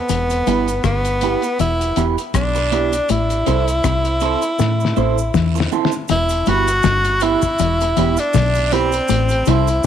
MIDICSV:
0, 0, Header, 1, 7, 480
1, 0, Start_track
1, 0, Key_signature, 1, "minor"
1, 0, Tempo, 750000
1, 58, Time_signature, 4, 2, 24, 8
1, 6312, End_track
2, 0, Start_track
2, 0, Title_t, "Clean electric guitar"
2, 0, Program_c, 0, 27
2, 304, Note_on_c, 0, 59, 82
2, 304, Note_on_c, 0, 64, 72
2, 307, Note_on_c, 0, 67, 82
2, 311, Note_on_c, 0, 71, 90
2, 420, Note_off_c, 0, 59, 0
2, 420, Note_off_c, 0, 64, 0
2, 422, Note_off_c, 0, 67, 0
2, 424, Note_off_c, 0, 71, 0
2, 783, Note_on_c, 0, 59, 73
2, 788, Note_on_c, 0, 64, 81
2, 789, Note_on_c, 0, 67, 91
2, 792, Note_on_c, 0, 71, 88
2, 900, Note_off_c, 0, 59, 0
2, 902, Note_off_c, 0, 64, 0
2, 903, Note_off_c, 0, 67, 0
2, 904, Note_off_c, 0, 71, 0
2, 1260, Note_on_c, 0, 59, 73
2, 1261, Note_on_c, 0, 64, 76
2, 1263, Note_on_c, 0, 67, 75
2, 1266, Note_on_c, 0, 71, 79
2, 1378, Note_off_c, 0, 59, 0
2, 1379, Note_off_c, 0, 64, 0
2, 1380, Note_off_c, 0, 67, 0
2, 1382, Note_off_c, 0, 71, 0
2, 1739, Note_on_c, 0, 59, 82
2, 1743, Note_on_c, 0, 64, 87
2, 1745, Note_on_c, 0, 67, 95
2, 1748, Note_on_c, 0, 71, 91
2, 1858, Note_off_c, 0, 59, 0
2, 1860, Note_off_c, 0, 64, 0
2, 1861, Note_off_c, 0, 67, 0
2, 1863, Note_off_c, 0, 71, 0
2, 2218, Note_on_c, 0, 60, 84
2, 2221, Note_on_c, 0, 64, 87
2, 2223, Note_on_c, 0, 69, 91
2, 2226, Note_on_c, 0, 72, 88
2, 2337, Note_off_c, 0, 60, 0
2, 2339, Note_off_c, 0, 64, 0
2, 2340, Note_off_c, 0, 69, 0
2, 2342, Note_off_c, 0, 72, 0
2, 2697, Note_on_c, 0, 60, 82
2, 2700, Note_on_c, 0, 64, 77
2, 2702, Note_on_c, 0, 69, 81
2, 2704, Note_on_c, 0, 72, 85
2, 2817, Note_off_c, 0, 60, 0
2, 2819, Note_off_c, 0, 64, 0
2, 2819, Note_off_c, 0, 69, 0
2, 2821, Note_off_c, 0, 72, 0
2, 3179, Note_on_c, 0, 60, 77
2, 3181, Note_on_c, 0, 64, 77
2, 3184, Note_on_c, 0, 69, 87
2, 3185, Note_on_c, 0, 72, 91
2, 3298, Note_off_c, 0, 60, 0
2, 3299, Note_off_c, 0, 64, 0
2, 3300, Note_off_c, 0, 69, 0
2, 3301, Note_off_c, 0, 72, 0
2, 3661, Note_on_c, 0, 60, 77
2, 3664, Note_on_c, 0, 64, 87
2, 3664, Note_on_c, 0, 69, 90
2, 3667, Note_on_c, 0, 72, 92
2, 3779, Note_off_c, 0, 60, 0
2, 3780, Note_off_c, 0, 69, 0
2, 3781, Note_off_c, 0, 64, 0
2, 3782, Note_off_c, 0, 72, 0
2, 4143, Note_on_c, 0, 59, 85
2, 4146, Note_on_c, 0, 64, 84
2, 4148, Note_on_c, 0, 67, 84
2, 4149, Note_on_c, 0, 71, 95
2, 4260, Note_off_c, 0, 59, 0
2, 4261, Note_off_c, 0, 64, 0
2, 4263, Note_off_c, 0, 67, 0
2, 4263, Note_off_c, 0, 71, 0
2, 4620, Note_on_c, 0, 59, 88
2, 4622, Note_on_c, 0, 64, 100
2, 4625, Note_on_c, 0, 67, 88
2, 4627, Note_on_c, 0, 71, 93
2, 4738, Note_off_c, 0, 59, 0
2, 4739, Note_off_c, 0, 64, 0
2, 4741, Note_off_c, 0, 67, 0
2, 4742, Note_off_c, 0, 71, 0
2, 5107, Note_on_c, 0, 59, 80
2, 5108, Note_on_c, 0, 64, 92
2, 5111, Note_on_c, 0, 67, 101
2, 5115, Note_on_c, 0, 71, 88
2, 5222, Note_off_c, 0, 59, 0
2, 5222, Note_off_c, 0, 64, 0
2, 5224, Note_off_c, 0, 67, 0
2, 5226, Note_off_c, 0, 71, 0
2, 5583, Note_on_c, 0, 59, 94
2, 5586, Note_on_c, 0, 64, 94
2, 5587, Note_on_c, 0, 67, 105
2, 5591, Note_on_c, 0, 71, 108
2, 5700, Note_off_c, 0, 59, 0
2, 5701, Note_off_c, 0, 64, 0
2, 5702, Note_off_c, 0, 67, 0
2, 5703, Note_off_c, 0, 71, 0
2, 6066, Note_on_c, 0, 60, 82
2, 6068, Note_on_c, 0, 64, 84
2, 6068, Note_on_c, 0, 69, 89
2, 6073, Note_on_c, 0, 72, 101
2, 6181, Note_off_c, 0, 60, 0
2, 6182, Note_off_c, 0, 64, 0
2, 6182, Note_off_c, 0, 69, 0
2, 6184, Note_off_c, 0, 72, 0
2, 6312, End_track
3, 0, Start_track
3, 0, Title_t, "Tenor saxophone"
3, 0, Program_c, 1, 66
3, 0, Note_on_c, 1, 59, 96
3, 516, Note_off_c, 1, 59, 0
3, 543, Note_on_c, 1, 59, 94
3, 995, Note_off_c, 1, 59, 0
3, 1028, Note_on_c, 1, 64, 99
3, 1317, Note_off_c, 1, 64, 0
3, 1507, Note_on_c, 1, 62, 92
3, 1988, Note_on_c, 1, 64, 102
3, 1997, Note_off_c, 1, 62, 0
3, 3663, Note_off_c, 1, 64, 0
3, 3911, Note_on_c, 1, 64, 113
3, 4153, Note_on_c, 1, 66, 114
3, 4162, Note_off_c, 1, 64, 0
3, 4629, Note_on_c, 1, 64, 108
3, 4639, Note_off_c, 1, 66, 0
3, 5244, Note_on_c, 1, 62, 109
3, 5253, Note_off_c, 1, 64, 0
3, 5591, Note_on_c, 1, 60, 102
3, 5600, Note_off_c, 1, 62, 0
3, 6071, Note_on_c, 1, 64, 100
3, 6081, Note_off_c, 1, 60, 0
3, 6300, Note_off_c, 1, 64, 0
3, 6312, End_track
4, 0, Start_track
4, 0, Title_t, "Clean electric guitar"
4, 0, Program_c, 2, 27
4, 61, Note_on_c, 2, 40, 78
4, 204, Note_off_c, 2, 40, 0
4, 301, Note_on_c, 2, 43, 72
4, 444, Note_off_c, 2, 43, 0
4, 541, Note_on_c, 2, 43, 67
4, 684, Note_off_c, 2, 43, 0
4, 1023, Note_on_c, 2, 40, 86
4, 1166, Note_off_c, 2, 40, 0
4, 1262, Note_on_c, 2, 40, 74
4, 1342, Note_off_c, 2, 40, 0
4, 1504, Note_on_c, 2, 47, 80
4, 1646, Note_off_c, 2, 47, 0
4, 1984, Note_on_c, 2, 45, 81
4, 2126, Note_off_c, 2, 45, 0
4, 2221, Note_on_c, 2, 48, 69
4, 2364, Note_off_c, 2, 48, 0
4, 2462, Note_on_c, 2, 48, 72
4, 2605, Note_off_c, 2, 48, 0
4, 2940, Note_on_c, 2, 57, 85
4, 3084, Note_off_c, 2, 57, 0
4, 3180, Note_on_c, 2, 45, 74
4, 3324, Note_off_c, 2, 45, 0
4, 3420, Note_on_c, 2, 52, 75
4, 3564, Note_off_c, 2, 52, 0
4, 3901, Note_on_c, 2, 40, 87
4, 4044, Note_off_c, 2, 40, 0
4, 4141, Note_on_c, 2, 43, 78
4, 4284, Note_off_c, 2, 43, 0
4, 4378, Note_on_c, 2, 43, 75
4, 4522, Note_off_c, 2, 43, 0
4, 4862, Note_on_c, 2, 40, 92
4, 5005, Note_off_c, 2, 40, 0
4, 5100, Note_on_c, 2, 40, 86
4, 5180, Note_off_c, 2, 40, 0
4, 5339, Note_on_c, 2, 47, 82
4, 5483, Note_off_c, 2, 47, 0
4, 5820, Note_on_c, 2, 45, 87
4, 5964, Note_off_c, 2, 45, 0
4, 6063, Note_on_c, 2, 48, 81
4, 6206, Note_off_c, 2, 48, 0
4, 6312, End_track
5, 0, Start_track
5, 0, Title_t, "Fingered electric bass"
5, 0, Program_c, 3, 33
5, 65, Note_on_c, 3, 28, 94
5, 269, Note_off_c, 3, 28, 0
5, 303, Note_on_c, 3, 31, 84
5, 508, Note_off_c, 3, 31, 0
5, 542, Note_on_c, 3, 31, 83
5, 863, Note_off_c, 3, 31, 0
5, 1023, Note_on_c, 3, 28, 93
5, 1228, Note_off_c, 3, 28, 0
5, 1261, Note_on_c, 3, 28, 84
5, 1376, Note_off_c, 3, 28, 0
5, 1501, Note_on_c, 3, 35, 89
5, 1914, Note_off_c, 3, 35, 0
5, 1986, Note_on_c, 3, 33, 96
5, 2190, Note_off_c, 3, 33, 0
5, 2227, Note_on_c, 3, 36, 87
5, 2431, Note_off_c, 3, 36, 0
5, 2461, Note_on_c, 3, 36, 88
5, 2783, Note_off_c, 3, 36, 0
5, 2945, Note_on_c, 3, 45, 90
5, 3149, Note_off_c, 3, 45, 0
5, 3185, Note_on_c, 3, 33, 79
5, 3390, Note_off_c, 3, 33, 0
5, 3423, Note_on_c, 3, 40, 86
5, 3628, Note_off_c, 3, 40, 0
5, 3909, Note_on_c, 3, 28, 100
5, 4112, Note_off_c, 3, 28, 0
5, 4148, Note_on_c, 3, 31, 89
5, 4351, Note_off_c, 3, 31, 0
5, 4383, Note_on_c, 3, 31, 88
5, 4704, Note_off_c, 3, 31, 0
5, 4867, Note_on_c, 3, 28, 98
5, 5070, Note_off_c, 3, 28, 0
5, 5109, Note_on_c, 3, 28, 94
5, 5220, Note_off_c, 3, 28, 0
5, 5345, Note_on_c, 3, 35, 105
5, 5756, Note_off_c, 3, 35, 0
5, 5826, Note_on_c, 3, 33, 98
5, 6030, Note_off_c, 3, 33, 0
5, 6063, Note_on_c, 3, 36, 94
5, 6268, Note_off_c, 3, 36, 0
5, 6312, End_track
6, 0, Start_track
6, 0, Title_t, "Muted clean electric guitar strokes"
6, 1636, Note_on_c, 9, 29, 44
6, 1700, Note_off_c, 9, 29, 0
6, 3554, Note_on_c, 9, 29, 40
6, 3618, Note_off_c, 9, 29, 0
6, 5003, Note_on_c, 9, 29, 52
6, 5067, Note_off_c, 9, 29, 0
6, 6312, End_track
7, 0, Start_track
7, 0, Title_t, "Drums"
7, 56, Note_on_c, 9, 69, 65
7, 60, Note_on_c, 9, 42, 94
7, 120, Note_off_c, 9, 69, 0
7, 124, Note_off_c, 9, 42, 0
7, 191, Note_on_c, 9, 69, 50
7, 199, Note_on_c, 9, 42, 51
7, 255, Note_off_c, 9, 69, 0
7, 263, Note_off_c, 9, 42, 0
7, 299, Note_on_c, 9, 69, 53
7, 302, Note_on_c, 9, 42, 72
7, 363, Note_off_c, 9, 69, 0
7, 366, Note_off_c, 9, 42, 0
7, 434, Note_on_c, 9, 42, 45
7, 437, Note_on_c, 9, 69, 77
7, 498, Note_off_c, 9, 42, 0
7, 501, Note_off_c, 9, 69, 0
7, 536, Note_on_c, 9, 69, 70
7, 537, Note_on_c, 9, 37, 104
7, 538, Note_on_c, 9, 36, 97
7, 538, Note_on_c, 9, 42, 84
7, 600, Note_off_c, 9, 69, 0
7, 601, Note_off_c, 9, 37, 0
7, 602, Note_off_c, 9, 36, 0
7, 602, Note_off_c, 9, 42, 0
7, 670, Note_on_c, 9, 42, 50
7, 673, Note_on_c, 9, 69, 48
7, 734, Note_off_c, 9, 42, 0
7, 737, Note_off_c, 9, 69, 0
7, 775, Note_on_c, 9, 42, 68
7, 775, Note_on_c, 9, 69, 51
7, 839, Note_off_c, 9, 42, 0
7, 839, Note_off_c, 9, 69, 0
7, 910, Note_on_c, 9, 42, 42
7, 916, Note_on_c, 9, 69, 73
7, 974, Note_off_c, 9, 42, 0
7, 980, Note_off_c, 9, 69, 0
7, 1020, Note_on_c, 9, 42, 74
7, 1020, Note_on_c, 9, 69, 67
7, 1084, Note_off_c, 9, 42, 0
7, 1084, Note_off_c, 9, 69, 0
7, 1159, Note_on_c, 9, 42, 53
7, 1159, Note_on_c, 9, 69, 47
7, 1223, Note_off_c, 9, 42, 0
7, 1223, Note_off_c, 9, 69, 0
7, 1255, Note_on_c, 9, 42, 73
7, 1261, Note_on_c, 9, 69, 59
7, 1319, Note_off_c, 9, 42, 0
7, 1325, Note_off_c, 9, 69, 0
7, 1396, Note_on_c, 9, 69, 80
7, 1397, Note_on_c, 9, 42, 46
7, 1460, Note_off_c, 9, 69, 0
7, 1461, Note_off_c, 9, 42, 0
7, 1498, Note_on_c, 9, 36, 110
7, 1498, Note_on_c, 9, 42, 89
7, 1499, Note_on_c, 9, 69, 63
7, 1499, Note_on_c, 9, 74, 63
7, 1501, Note_on_c, 9, 37, 112
7, 1562, Note_off_c, 9, 36, 0
7, 1562, Note_off_c, 9, 42, 0
7, 1563, Note_off_c, 9, 69, 0
7, 1563, Note_off_c, 9, 74, 0
7, 1565, Note_off_c, 9, 37, 0
7, 1632, Note_on_c, 9, 69, 49
7, 1636, Note_on_c, 9, 42, 46
7, 1696, Note_off_c, 9, 69, 0
7, 1700, Note_off_c, 9, 42, 0
7, 1742, Note_on_c, 9, 42, 81
7, 1742, Note_on_c, 9, 69, 47
7, 1806, Note_off_c, 9, 42, 0
7, 1806, Note_off_c, 9, 69, 0
7, 1873, Note_on_c, 9, 69, 68
7, 1874, Note_on_c, 9, 42, 59
7, 1937, Note_off_c, 9, 69, 0
7, 1938, Note_off_c, 9, 42, 0
7, 1977, Note_on_c, 9, 69, 64
7, 1978, Note_on_c, 9, 42, 86
7, 2041, Note_off_c, 9, 69, 0
7, 2042, Note_off_c, 9, 42, 0
7, 2113, Note_on_c, 9, 42, 47
7, 2113, Note_on_c, 9, 69, 53
7, 2177, Note_off_c, 9, 42, 0
7, 2177, Note_off_c, 9, 69, 0
7, 2217, Note_on_c, 9, 42, 71
7, 2220, Note_on_c, 9, 69, 49
7, 2281, Note_off_c, 9, 42, 0
7, 2284, Note_off_c, 9, 69, 0
7, 2353, Note_on_c, 9, 42, 43
7, 2355, Note_on_c, 9, 69, 76
7, 2417, Note_off_c, 9, 42, 0
7, 2419, Note_off_c, 9, 69, 0
7, 2456, Note_on_c, 9, 69, 66
7, 2458, Note_on_c, 9, 36, 100
7, 2458, Note_on_c, 9, 37, 103
7, 2459, Note_on_c, 9, 42, 86
7, 2520, Note_off_c, 9, 69, 0
7, 2522, Note_off_c, 9, 36, 0
7, 2522, Note_off_c, 9, 37, 0
7, 2523, Note_off_c, 9, 42, 0
7, 2590, Note_on_c, 9, 69, 48
7, 2591, Note_on_c, 9, 42, 49
7, 2654, Note_off_c, 9, 69, 0
7, 2655, Note_off_c, 9, 42, 0
7, 2689, Note_on_c, 9, 69, 51
7, 2697, Note_on_c, 9, 42, 66
7, 2753, Note_off_c, 9, 69, 0
7, 2761, Note_off_c, 9, 42, 0
7, 2828, Note_on_c, 9, 69, 72
7, 2832, Note_on_c, 9, 42, 41
7, 2892, Note_off_c, 9, 69, 0
7, 2896, Note_off_c, 9, 42, 0
7, 2937, Note_on_c, 9, 69, 69
7, 2943, Note_on_c, 9, 38, 51
7, 3001, Note_off_c, 9, 69, 0
7, 3007, Note_off_c, 9, 38, 0
7, 3073, Note_on_c, 9, 69, 46
7, 3103, Note_on_c, 9, 38, 54
7, 3137, Note_off_c, 9, 69, 0
7, 3167, Note_off_c, 9, 38, 0
7, 3177, Note_on_c, 9, 69, 54
7, 3241, Note_off_c, 9, 69, 0
7, 3315, Note_on_c, 9, 69, 78
7, 3379, Note_off_c, 9, 69, 0
7, 3417, Note_on_c, 9, 69, 59
7, 3417, Note_on_c, 9, 74, 59
7, 3419, Note_on_c, 9, 36, 111
7, 3424, Note_on_c, 9, 38, 73
7, 3481, Note_off_c, 9, 69, 0
7, 3481, Note_off_c, 9, 74, 0
7, 3483, Note_off_c, 9, 36, 0
7, 3488, Note_off_c, 9, 38, 0
7, 3553, Note_on_c, 9, 69, 51
7, 3585, Note_on_c, 9, 38, 94
7, 3617, Note_off_c, 9, 69, 0
7, 3649, Note_off_c, 9, 38, 0
7, 3659, Note_on_c, 9, 69, 47
7, 3723, Note_off_c, 9, 69, 0
7, 3744, Note_on_c, 9, 38, 88
7, 3787, Note_on_c, 9, 69, 68
7, 3808, Note_off_c, 9, 38, 0
7, 3851, Note_off_c, 9, 69, 0
7, 3892, Note_on_c, 9, 69, 72
7, 3898, Note_on_c, 9, 42, 98
7, 3956, Note_off_c, 9, 69, 0
7, 3962, Note_off_c, 9, 42, 0
7, 4026, Note_on_c, 9, 69, 60
7, 4037, Note_on_c, 9, 42, 53
7, 4090, Note_off_c, 9, 69, 0
7, 4101, Note_off_c, 9, 42, 0
7, 4134, Note_on_c, 9, 69, 55
7, 4141, Note_on_c, 9, 42, 76
7, 4198, Note_off_c, 9, 69, 0
7, 4205, Note_off_c, 9, 42, 0
7, 4273, Note_on_c, 9, 69, 82
7, 4274, Note_on_c, 9, 42, 47
7, 4337, Note_off_c, 9, 69, 0
7, 4338, Note_off_c, 9, 42, 0
7, 4370, Note_on_c, 9, 69, 74
7, 4378, Note_on_c, 9, 38, 117
7, 4379, Note_on_c, 9, 36, 111
7, 4379, Note_on_c, 9, 42, 89
7, 4434, Note_off_c, 9, 69, 0
7, 4442, Note_off_c, 9, 38, 0
7, 4443, Note_off_c, 9, 36, 0
7, 4443, Note_off_c, 9, 42, 0
7, 4509, Note_on_c, 9, 69, 55
7, 4510, Note_on_c, 9, 42, 56
7, 4573, Note_off_c, 9, 69, 0
7, 4574, Note_off_c, 9, 42, 0
7, 4609, Note_on_c, 9, 69, 57
7, 4616, Note_on_c, 9, 42, 70
7, 4673, Note_off_c, 9, 69, 0
7, 4680, Note_off_c, 9, 42, 0
7, 4747, Note_on_c, 9, 69, 73
7, 4753, Note_on_c, 9, 42, 47
7, 4754, Note_on_c, 9, 36, 71
7, 4811, Note_off_c, 9, 69, 0
7, 4817, Note_off_c, 9, 42, 0
7, 4818, Note_off_c, 9, 36, 0
7, 4855, Note_on_c, 9, 69, 82
7, 4861, Note_on_c, 9, 42, 82
7, 4919, Note_off_c, 9, 69, 0
7, 4925, Note_off_c, 9, 42, 0
7, 4995, Note_on_c, 9, 69, 51
7, 5002, Note_on_c, 9, 42, 56
7, 5059, Note_off_c, 9, 69, 0
7, 5066, Note_off_c, 9, 42, 0
7, 5099, Note_on_c, 9, 69, 60
7, 5100, Note_on_c, 9, 42, 81
7, 5163, Note_off_c, 9, 69, 0
7, 5164, Note_off_c, 9, 42, 0
7, 5227, Note_on_c, 9, 69, 85
7, 5239, Note_on_c, 9, 42, 51
7, 5291, Note_off_c, 9, 69, 0
7, 5303, Note_off_c, 9, 42, 0
7, 5334, Note_on_c, 9, 69, 67
7, 5334, Note_on_c, 9, 74, 72
7, 5342, Note_on_c, 9, 36, 123
7, 5345, Note_on_c, 9, 42, 99
7, 5348, Note_on_c, 9, 38, 124
7, 5398, Note_off_c, 9, 69, 0
7, 5398, Note_off_c, 9, 74, 0
7, 5406, Note_off_c, 9, 36, 0
7, 5409, Note_off_c, 9, 42, 0
7, 5412, Note_off_c, 9, 38, 0
7, 5469, Note_on_c, 9, 69, 56
7, 5480, Note_on_c, 9, 42, 49
7, 5533, Note_off_c, 9, 69, 0
7, 5544, Note_off_c, 9, 42, 0
7, 5578, Note_on_c, 9, 69, 52
7, 5585, Note_on_c, 9, 42, 86
7, 5642, Note_off_c, 9, 69, 0
7, 5649, Note_off_c, 9, 42, 0
7, 5709, Note_on_c, 9, 69, 73
7, 5720, Note_on_c, 9, 42, 61
7, 5773, Note_off_c, 9, 69, 0
7, 5784, Note_off_c, 9, 42, 0
7, 5811, Note_on_c, 9, 69, 70
7, 5825, Note_on_c, 9, 42, 96
7, 5875, Note_off_c, 9, 69, 0
7, 5889, Note_off_c, 9, 42, 0
7, 5944, Note_on_c, 9, 69, 58
7, 5959, Note_on_c, 9, 42, 55
7, 6008, Note_off_c, 9, 69, 0
7, 6023, Note_off_c, 9, 42, 0
7, 6051, Note_on_c, 9, 69, 55
7, 6064, Note_on_c, 9, 42, 78
7, 6115, Note_off_c, 9, 69, 0
7, 6128, Note_off_c, 9, 42, 0
7, 6191, Note_on_c, 9, 69, 81
7, 6197, Note_on_c, 9, 42, 46
7, 6255, Note_off_c, 9, 69, 0
7, 6261, Note_off_c, 9, 42, 0
7, 6312, End_track
0, 0, End_of_file